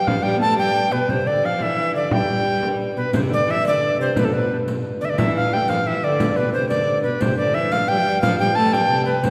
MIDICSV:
0, 0, Header, 1, 6, 480
1, 0, Start_track
1, 0, Tempo, 339751
1, 97, Time_signature, 6, 3, 24, 8
1, 13140, End_track
2, 0, Start_track
2, 0, Title_t, "Recorder"
2, 0, Program_c, 0, 74
2, 100, Note_on_c, 0, 77, 92
2, 319, Note_on_c, 0, 79, 91
2, 341, Note_off_c, 0, 77, 0
2, 567, Note_off_c, 0, 79, 0
2, 575, Note_on_c, 0, 81, 98
2, 803, Note_off_c, 0, 81, 0
2, 820, Note_on_c, 0, 79, 101
2, 1299, Note_on_c, 0, 71, 88
2, 1320, Note_off_c, 0, 79, 0
2, 1552, Note_on_c, 0, 72, 89
2, 1573, Note_off_c, 0, 71, 0
2, 1793, Note_on_c, 0, 74, 91
2, 1814, Note_off_c, 0, 72, 0
2, 2051, Note_on_c, 0, 77, 87
2, 2072, Note_off_c, 0, 74, 0
2, 2288, Note_on_c, 0, 76, 95
2, 2309, Note_off_c, 0, 77, 0
2, 2751, Note_off_c, 0, 76, 0
2, 2759, Note_on_c, 0, 74, 83
2, 2998, Note_on_c, 0, 79, 94
2, 3019, Note_off_c, 0, 74, 0
2, 3784, Note_off_c, 0, 79, 0
2, 4190, Note_on_c, 0, 71, 72
2, 4418, Note_off_c, 0, 71, 0
2, 4445, Note_on_c, 0, 72, 85
2, 4530, Note_off_c, 0, 72, 0
2, 4707, Note_on_c, 0, 74, 101
2, 4952, Note_on_c, 0, 76, 111
2, 4973, Note_off_c, 0, 74, 0
2, 5176, Note_off_c, 0, 76, 0
2, 5190, Note_on_c, 0, 74, 94
2, 5624, Note_off_c, 0, 74, 0
2, 5662, Note_on_c, 0, 72, 84
2, 5919, Note_on_c, 0, 71, 80
2, 5940, Note_off_c, 0, 72, 0
2, 5995, Note_on_c, 0, 69, 66
2, 6016, Note_off_c, 0, 71, 0
2, 6119, Note_on_c, 0, 71, 73
2, 6140, Note_off_c, 0, 69, 0
2, 6447, Note_off_c, 0, 71, 0
2, 7077, Note_on_c, 0, 74, 82
2, 7132, Note_on_c, 0, 76, 62
2, 7153, Note_off_c, 0, 74, 0
2, 7197, Note_on_c, 0, 74, 80
2, 7218, Note_off_c, 0, 76, 0
2, 7316, Note_on_c, 0, 76, 90
2, 7337, Note_off_c, 0, 74, 0
2, 7559, Note_off_c, 0, 76, 0
2, 7576, Note_on_c, 0, 77, 90
2, 7815, Note_on_c, 0, 79, 93
2, 7837, Note_off_c, 0, 77, 0
2, 8038, Note_on_c, 0, 77, 86
2, 8059, Note_off_c, 0, 79, 0
2, 8288, Note_on_c, 0, 76, 94
2, 8309, Note_off_c, 0, 77, 0
2, 8530, Note_on_c, 0, 74, 91
2, 8552, Note_off_c, 0, 76, 0
2, 8988, Note_on_c, 0, 71, 85
2, 9009, Note_off_c, 0, 74, 0
2, 9214, Note_off_c, 0, 71, 0
2, 9223, Note_on_c, 0, 72, 84
2, 9439, Note_off_c, 0, 72, 0
2, 9448, Note_on_c, 0, 74, 89
2, 9906, Note_off_c, 0, 74, 0
2, 9930, Note_on_c, 0, 71, 81
2, 10191, Note_on_c, 0, 72, 91
2, 10212, Note_off_c, 0, 71, 0
2, 10412, Note_off_c, 0, 72, 0
2, 10420, Note_on_c, 0, 74, 90
2, 10654, Note_on_c, 0, 76, 99
2, 10675, Note_off_c, 0, 74, 0
2, 10904, Note_on_c, 0, 77, 98
2, 10925, Note_off_c, 0, 76, 0
2, 11135, Note_on_c, 0, 79, 110
2, 11156, Note_off_c, 0, 77, 0
2, 11598, Note_off_c, 0, 79, 0
2, 11607, Note_on_c, 0, 77, 103
2, 11838, Note_off_c, 0, 77, 0
2, 11849, Note_on_c, 0, 79, 102
2, 12082, Note_on_c, 0, 81, 104
2, 12103, Note_off_c, 0, 79, 0
2, 12331, Note_on_c, 0, 79, 98
2, 12353, Note_off_c, 0, 81, 0
2, 12780, Note_off_c, 0, 79, 0
2, 12789, Note_on_c, 0, 71, 84
2, 13048, Note_on_c, 0, 72, 93
2, 13069, Note_off_c, 0, 71, 0
2, 13140, Note_off_c, 0, 72, 0
2, 13140, End_track
3, 0, Start_track
3, 0, Title_t, "Viola da gamba"
3, 0, Program_c, 1, 42
3, 91, Note_on_c, 1, 53, 89
3, 310, Note_off_c, 1, 53, 0
3, 319, Note_on_c, 1, 55, 82
3, 516, Note_on_c, 1, 59, 60
3, 538, Note_off_c, 1, 55, 0
3, 568, Note_on_c, 1, 57, 84
3, 589, Note_off_c, 1, 59, 0
3, 796, Note_on_c, 1, 55, 88
3, 818, Note_off_c, 1, 57, 0
3, 1287, Note_off_c, 1, 55, 0
3, 1296, Note_on_c, 1, 47, 73
3, 1525, Note_off_c, 1, 47, 0
3, 1531, Note_on_c, 1, 48, 84
3, 1758, Note_off_c, 1, 48, 0
3, 1767, Note_on_c, 1, 50, 74
3, 2026, Note_on_c, 1, 53, 76
3, 2048, Note_off_c, 1, 50, 0
3, 2257, Note_on_c, 1, 52, 78
3, 2279, Note_off_c, 1, 53, 0
3, 2741, Note_on_c, 1, 50, 74
3, 2762, Note_off_c, 1, 52, 0
3, 2983, Note_off_c, 1, 50, 0
3, 2991, Note_on_c, 1, 55, 85
3, 4141, Note_off_c, 1, 55, 0
3, 4178, Note_on_c, 1, 47, 67
3, 4411, Note_off_c, 1, 47, 0
3, 4428, Note_on_c, 1, 48, 90
3, 4660, Note_on_c, 1, 50, 80
3, 4681, Note_off_c, 1, 48, 0
3, 4886, Note_off_c, 1, 50, 0
3, 4894, Note_on_c, 1, 52, 89
3, 5008, Note_off_c, 1, 52, 0
3, 5147, Note_on_c, 1, 50, 80
3, 5600, Note_off_c, 1, 50, 0
3, 5638, Note_on_c, 1, 48, 77
3, 5863, Note_off_c, 1, 48, 0
3, 5890, Note_on_c, 1, 47, 78
3, 6061, Note_off_c, 1, 47, 0
3, 6079, Note_on_c, 1, 47, 69
3, 6402, Note_off_c, 1, 47, 0
3, 7096, Note_on_c, 1, 50, 70
3, 7201, Note_off_c, 1, 50, 0
3, 7209, Note_on_c, 1, 50, 65
3, 7308, Note_on_c, 1, 52, 83
3, 7330, Note_off_c, 1, 50, 0
3, 7781, Note_off_c, 1, 52, 0
3, 7789, Note_on_c, 1, 55, 73
3, 7854, Note_on_c, 1, 57, 63
3, 7875, Note_off_c, 1, 55, 0
3, 7924, Note_on_c, 1, 55, 81
3, 7945, Note_off_c, 1, 57, 0
3, 8042, Note_off_c, 1, 55, 0
3, 8051, Note_on_c, 1, 53, 75
3, 8269, Note_off_c, 1, 53, 0
3, 8287, Note_on_c, 1, 52, 75
3, 8507, Note_off_c, 1, 52, 0
3, 8517, Note_on_c, 1, 50, 83
3, 8964, Note_off_c, 1, 50, 0
3, 8999, Note_on_c, 1, 47, 70
3, 9221, Note_off_c, 1, 47, 0
3, 9245, Note_on_c, 1, 48, 72
3, 9465, Note_on_c, 1, 50, 76
3, 9486, Note_off_c, 1, 48, 0
3, 9957, Note_on_c, 1, 47, 69
3, 9978, Note_off_c, 1, 50, 0
3, 10195, Note_off_c, 1, 47, 0
3, 10202, Note_on_c, 1, 48, 85
3, 10421, Note_off_c, 1, 48, 0
3, 10440, Note_on_c, 1, 50, 73
3, 10674, Note_on_c, 1, 52, 82
3, 10695, Note_off_c, 1, 50, 0
3, 10891, Note_off_c, 1, 52, 0
3, 10899, Note_on_c, 1, 53, 81
3, 11009, Note_off_c, 1, 53, 0
3, 11156, Note_on_c, 1, 55, 87
3, 11255, Note_on_c, 1, 53, 75
3, 11276, Note_off_c, 1, 55, 0
3, 11328, Note_on_c, 1, 55, 94
3, 11349, Note_off_c, 1, 53, 0
3, 11622, Note_off_c, 1, 55, 0
3, 11637, Note_on_c, 1, 53, 95
3, 11854, Note_off_c, 1, 53, 0
3, 11877, Note_on_c, 1, 55, 83
3, 11982, Note_off_c, 1, 55, 0
3, 12107, Note_on_c, 1, 57, 89
3, 12333, Note_on_c, 1, 55, 93
3, 12355, Note_off_c, 1, 57, 0
3, 12555, Note_off_c, 1, 55, 0
3, 12563, Note_on_c, 1, 48, 84
3, 13014, Note_off_c, 1, 48, 0
3, 13047, Note_on_c, 1, 48, 89
3, 13140, Note_off_c, 1, 48, 0
3, 13140, End_track
4, 0, Start_track
4, 0, Title_t, "Harmonium"
4, 0, Program_c, 2, 20
4, 0, Note_on_c, 2, 43, 72
4, 4426, Note_off_c, 2, 43, 0
4, 4447, Note_on_c, 2, 43, 84
4, 10178, Note_off_c, 2, 43, 0
4, 10200, Note_on_c, 2, 43, 81
4, 13140, Note_off_c, 2, 43, 0
4, 13140, End_track
5, 0, Start_track
5, 0, Title_t, "Frame drum"
5, 105, Note_on_c, 9, 64, 83
5, 246, Note_off_c, 9, 64, 0
5, 593, Note_on_c, 9, 64, 24
5, 734, Note_off_c, 9, 64, 0
5, 826, Note_on_c, 9, 64, 57
5, 967, Note_off_c, 9, 64, 0
5, 1539, Note_on_c, 9, 64, 64
5, 1681, Note_off_c, 9, 64, 0
5, 2035, Note_on_c, 9, 64, 24
5, 2176, Note_off_c, 9, 64, 0
5, 2263, Note_on_c, 9, 64, 61
5, 2404, Note_off_c, 9, 64, 0
5, 2985, Note_on_c, 9, 64, 90
5, 3126, Note_off_c, 9, 64, 0
5, 3234, Note_on_c, 9, 64, 31
5, 3375, Note_off_c, 9, 64, 0
5, 3474, Note_on_c, 9, 64, 29
5, 3615, Note_off_c, 9, 64, 0
5, 3713, Note_on_c, 9, 64, 71
5, 3854, Note_off_c, 9, 64, 0
5, 3957, Note_on_c, 9, 64, 27
5, 4098, Note_off_c, 9, 64, 0
5, 4434, Note_on_c, 9, 64, 80
5, 4576, Note_off_c, 9, 64, 0
5, 4921, Note_on_c, 9, 64, 27
5, 5062, Note_off_c, 9, 64, 0
5, 5154, Note_on_c, 9, 64, 64
5, 5296, Note_off_c, 9, 64, 0
5, 5880, Note_on_c, 9, 64, 85
5, 6021, Note_off_c, 9, 64, 0
5, 6371, Note_on_c, 9, 64, 28
5, 6512, Note_off_c, 9, 64, 0
5, 6615, Note_on_c, 9, 64, 70
5, 6757, Note_off_c, 9, 64, 0
5, 7326, Note_on_c, 9, 64, 96
5, 7468, Note_off_c, 9, 64, 0
5, 7817, Note_on_c, 9, 64, 31
5, 7958, Note_off_c, 9, 64, 0
5, 8048, Note_on_c, 9, 64, 78
5, 8189, Note_off_c, 9, 64, 0
5, 8758, Note_on_c, 9, 64, 83
5, 8899, Note_off_c, 9, 64, 0
5, 9478, Note_on_c, 9, 64, 69
5, 9620, Note_off_c, 9, 64, 0
5, 10201, Note_on_c, 9, 64, 79
5, 10342, Note_off_c, 9, 64, 0
5, 10684, Note_on_c, 9, 64, 27
5, 10825, Note_off_c, 9, 64, 0
5, 10911, Note_on_c, 9, 64, 70
5, 11052, Note_off_c, 9, 64, 0
5, 11627, Note_on_c, 9, 64, 88
5, 11769, Note_off_c, 9, 64, 0
5, 12105, Note_on_c, 9, 64, 27
5, 12247, Note_off_c, 9, 64, 0
5, 12339, Note_on_c, 9, 64, 68
5, 12481, Note_off_c, 9, 64, 0
5, 13065, Note_on_c, 9, 64, 80
5, 13140, Note_off_c, 9, 64, 0
5, 13140, End_track
6, 0, Start_track
6, 0, Title_t, "Riq"
6, 4426, Note_on_c, 9, 54, 63
6, 4567, Note_off_c, 9, 54, 0
6, 5154, Note_on_c, 9, 54, 49
6, 5295, Note_off_c, 9, 54, 0
6, 5889, Note_on_c, 9, 54, 74
6, 6030, Note_off_c, 9, 54, 0
6, 6608, Note_on_c, 9, 54, 54
6, 6750, Note_off_c, 9, 54, 0
6, 7080, Note_on_c, 9, 54, 21
6, 7221, Note_off_c, 9, 54, 0
6, 7321, Note_on_c, 9, 54, 66
6, 7462, Note_off_c, 9, 54, 0
6, 8025, Note_on_c, 9, 54, 49
6, 8166, Note_off_c, 9, 54, 0
6, 8762, Note_on_c, 9, 54, 68
6, 8904, Note_off_c, 9, 54, 0
6, 9001, Note_on_c, 9, 54, 21
6, 9142, Note_off_c, 9, 54, 0
6, 9240, Note_on_c, 9, 54, 21
6, 9381, Note_off_c, 9, 54, 0
6, 9468, Note_on_c, 9, 54, 52
6, 9609, Note_off_c, 9, 54, 0
6, 9942, Note_on_c, 9, 54, 20
6, 10083, Note_off_c, 9, 54, 0
6, 10179, Note_on_c, 9, 54, 70
6, 10320, Note_off_c, 9, 54, 0
6, 10900, Note_on_c, 9, 54, 51
6, 11041, Note_off_c, 9, 54, 0
6, 11390, Note_on_c, 9, 54, 20
6, 11531, Note_off_c, 9, 54, 0
6, 11625, Note_on_c, 9, 54, 63
6, 11766, Note_off_c, 9, 54, 0
6, 12346, Note_on_c, 9, 54, 49
6, 12488, Note_off_c, 9, 54, 0
6, 12833, Note_on_c, 9, 54, 21
6, 12974, Note_off_c, 9, 54, 0
6, 13046, Note_on_c, 9, 54, 70
6, 13140, Note_off_c, 9, 54, 0
6, 13140, End_track
0, 0, End_of_file